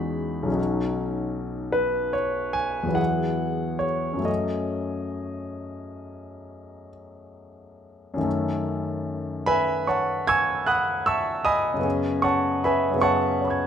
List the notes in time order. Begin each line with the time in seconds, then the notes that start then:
Already playing: E2 G#3 C#4 D#4 F#4 B5
0.43 B1 F#3
0.48 C#4 D#4
0.55 F#4
1.72 B4
2.13 C#5
2.53 G#5
2.83 E2 F#3
2.89 B3 E4
2.94 G#4 F#5
3.79 C#5
4.13 F#2 F#3
4.18 A3 C#4
4.24 A4 D#5
8.14 F#2 D#3
8.19 A3 C#4
8.23 A4
9.46 B4 E5 G#5 B5
9.87 C#5 F#5 A5 C#6
10.27 G#5 C#6 E6 G#6
10.66 F#5 B5 D#6 F#6
11.06 E5 A5 C#6 E6
11.45 D#5 G#5 B5 D#6
11.74 F#2 C#3
11.79 B3 C#4
11.84 G#4
12.22 C#5 F#5 A5 C#6
12.64 B4 E5 G#5 B5
12.91 F#2 C#3
12.96 B3 C#4
13.01 G#4 C#5 F#5 A5 C#6
13.41 C#5 B5
13.48 C#6 G#6